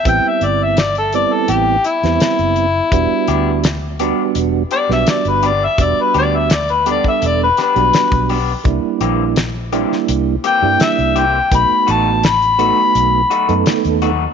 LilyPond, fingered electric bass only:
\new Staff \with { instrumentName = "Fingered electric bass" } { \clef bass \time 4/4 \key e \minor \tempo 4 = 84 a,,16 r16 g,,4. a,,8 r16 e,16 r16 fis,,8. | e,,16 r16 d,4. e,,8 r16 b,,16 r16 g,,8. | e,,16 r16 d,4. e,,8 r16 b,,16 r16 b,,8. | c,16 r16 bes,,4. c,8 r16 g,16 r16 c,8. |
b,,16 r16 a,,4. b,,8 r16 fis,16 r16 dis,8. | }